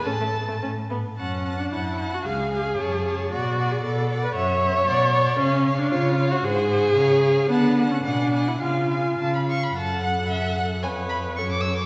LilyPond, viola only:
\new Staff \with { instrumentName = "Viola" } { \time 2/4 \key a \major \tempo 4 = 112 a'4 r4 | \key fis \minor cis'8. d'16 e'8. fis'16 | gis'2 | fis'8. gis'16 a'8. b'16 |
cis''2 | cis'8. d'16 eis'8. fis'16 | gis'2 | b8. cis'16 d'8. e'16 |
eis'4. r8 | a'2 | b'4 a'4 | }